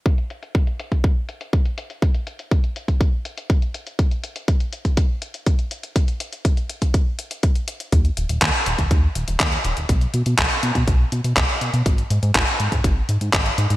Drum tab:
HH |xxxxxxxxx-xxxxxx|xxxxxxxxx-xxxxxx|xxxxxxxxx-xxxxxx|xxxxxxxxx-xxxxxx|
CP |----------------|----------------|----------------|----------------|
BD |o---o--oo---o---|o---o--oo---o---|o---o--oo---o---|o---o--oo---o---|

HH |xxxxxxxxx-xxxxxx|xxxxxxxxx-xxxxxx|xxxxxxxxx-xxxxxx|
CP |----x-------x---|----x-------x---|----x-------x---|
BD |o---o--oo---o---|o---o--oo---o---|o---o--oo---o---|